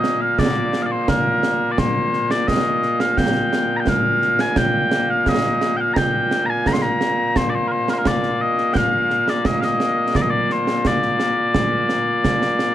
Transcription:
Already playing: A#2 A#3 D#5
0.04 snare
0.21 F5
0.39 D5, concert bass drum, snare
0.73 snare
0.82 D5 F5
0.91 C5
1.08 A#4, concert bass drum, snare
1.43 snare
1.71 D5
1.78 C5, concert bass drum, snare
2.13 snare
2.31 D5, snare
2.48 D#5, concert bass drum, snare
2.83 snare
3.00 F5, snare
3.17 G5, concert bass drum, snare
3.53 snare
3.77 G5 A#5
3.87 F5, concert bass drum, snare
4.22 snare
4.39 G#5, snare
4.56 G5, concert bass drum, snare
4.92 snare
5.10 F5
5.26 D#5, concert bass drum, snare
5.44 snare
5.61 snare
5.77 F5 G5
5.93 A#5, concert bass drum, snare
5.97 G5
6.31 snare
6.46 A#5
6.50 G#5
6.66 A#5, concert bass drum, snare
6.73 C6
6.82 A#5
7.01 snare
7.36 C5, concert bass drum, snare
7.49 D5
7.55 C5
7.68 A#4 C5
7.88 A#4, snare
7.93 C5
7.98 A#4
8.05 D5, concert bass drum, snare
8.23 snare
8.42 D#5
8.58 snare
8.73 F5 G5, concert bass drum, snare
9.10 snare
9.28 D5, snare
9.45 D#5, concert bass drum, snare
9.61 D#5 F5, snare
9.80 snare
10.15 D5, concert bass drum, snare
10.22 D#5
10.30 D5
10.50 C5, snare
10.67 snare
10.85 D5, concert bass drum, snare
11.02 snare
11.20 snare
11.55 concert bass drum, snare
11.89 snare
12.25 concert bass drum, snare
12.42 snare
12.59 snare

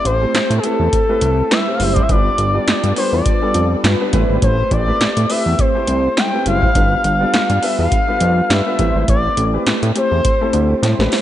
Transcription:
Already playing: A3 C4 G4
0.05 A1 C5, closed hi-hat
0.21 A3 C4 E4 G4 C5
0.34 A2, snare, clap, closed hi-hat
0.50 A2, closed hi-hat
0.58 G#4
0.63 A3 C4 E4 G4 A4 B4, closed hi-hat
0.80 E2
0.93 kick, closed hi-hat
1.09 A3 C4 E4 G4 B4
1.21 C2, closed hi-hat
1.51 G3 E4 B4 E5, snare, clap, closed hi-hat
1.67 A3 C4 E4 G4 C5
1.75 F5
1.80 F#1 G3 E4 C5 E5, open hi-hat
1.93 D5, kick, closed hi-hat
2.02 E5
2.09 G1 G3 B3 D4 F4 A4 B4 D5, kick, closed hi-hat
2.38 G1, closed hi-hat
2.54 G3 B3 D4 F4 D5
2.67 G2, snare, clap, closed hi-hat
2.84 G2, closed hi-hat
2.96 G3 B3 D4 F4 B4 C5, open hi-hat
3.13 E2 D5
3.26 kick, closed hi-hat
3.42 G3 B3 D4 F4 A4
3.54 F2, closed hi-hat
3.84 G2 G3 F4 B4, snare, clap, closed hi-hat
4.00 G3 B3 D4 F4 B4
4.13 A1 G3 A3 C4 E4 G4 B4 C5, kick, closed hi-hat
4.29 G#1
4.42 A1 C5, kick, closed hi-hat
4.71 A1 D5, kick, closed hi-hat
4.87 A3 C4 E4 G4 B4
5.01 A2, snare, clap, closed hi-hat
5.17 A2, closed hi-hat
5.29 A3 C4 E4 G4 B4 E5, open hi-hat
5.46 E2
5.59 C5, kick, closed hi-hat
5.75 A3 C4 E4 G4 C5
5.87 C2, closed hi-hat
6.17 G3 E4 C5 G5, snare, clap, closed hi-hat
6.33 A3 C4 E4 G4 B4
6.46 F#1 G3 E4 C5 F5, closed hi-hat
6.62 kick
6.75 G1 G3 B3 D4 F4 A4 B4, kick, closed hi-hat
7.04 G1, closed hi-hat
7.20 G3 B3 D4 F4 D5
7.34 G2, snare, clap, closed hi-hat
7.50 G2, closed hi-hat
7.62 G3 B3 D4 F4 B4 E5, open hi-hat
7.79 E2 F5
7.92 kick, closed hi-hat
8.08 G3 B3 D4 F4 B4
8.20 F2, closed hi-hat
8.50 G2 G3 F4 B4 E5, snare, clap, closed hi-hat
8.66 G3 B3 D4 F4 B4
8.78 A1 G3 A3 C4 E4 G4 B4 C5, kick, closed hi-hat
8.95 G#1
9.08 A1 D5, kick, closed hi-hat
9.37 A1, closed hi-hat
9.53 A3 C4 E4 G4 B4
9.66 A2, snare, clap, closed hi-hat
9.83 A2, closed hi-hat
9.95 A3 C4 E4 G4 C5, closed hi-hat
10.12 E2
10.25 kick, closed hi-hat
10.41 A3 C4 E4 G4 A4
10.53 D2, closed hi-hat
10.83 A2 G3 E4 C5, snare, closed hi-hat
10.99 A1 A3 C4 E4 G4 B4, snare
11.12 G3 E4 C5, snare, open hi-hat

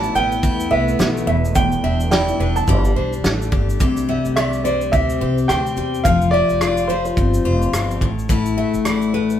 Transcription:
Already playing: A2 E3 A3 B3 E4 D5 A5
0.03 shaker
0.15 A1 B3 B4 G5, shaker
0.32 shaker
0.43 E2 E4, kick, shaker
0.60 shaker
0.71 C2 B3 B4 E5
0.88 shaker
0.99 B1 A3, snare, shaker
1.17 shaker
1.27 E1 E2 G3 D4 E5
1.45 shaker
1.55 E2 G5, kick, shaker
1.72 shaker
1.84 E1 D4 E5
2.00 shaker
2.11 E4 D5 G5, snare, shaker
2.28 shaker
2.40 E1 D4 B4
2.56 A5, shaker
2.68 G1 G3 A3, kick, shaker
2.85 shaker
2.96 B1 D4 C5
3.13 shaker
3.24 A1 A3, snare, shaker
3.42 shaker
3.52 G1 G4, kick
3.70 shaker
3.80 C2 C3 G4, kick, shaker
3.97 shaker
4.09 G3 E5
4.25 C2, shaker
4.36 G4 D5 E5, cross-stick, shaker
4.53 shaker
4.64 G3 C5 D5, shaker
4.81 shaker
4.92 D2 C4 E5, kick, shaker
5.10 shaker
5.21 C2 G4 C5
5.38 shaker
5.48 D2 C4 G5, cross-stick, shaker
5.66 shaker
5.77 E2 G3, shaker
5.94 shaker
6.04 F1 F3 F4 F5, kick, shaker
6.22 shaker
6.31 G3 D5 E5
6.49 F1, shaker
6.61 F4 D5, cross-stick, shaker
6.77 shaker
6.87 G3 C5, shaker
7.05 C5, shaker
7.17 G1 C4, kick, shaker
7.34 shaker
7.45 F1 F4 C5
7.62 shaker
7.73 G1 C4, cross-stick, shaker
7.91 shaker
8.01 A1 A2, kick
8.19 shaker
8.29 A2 E4, kick, shaker
8.46 shaker
8.57 A3 E5
8.74 A1, shaker
8.85 E4 D5, cross-stick, shaker
9.02 shaker
9.14 A3 B4
9.30 shaker

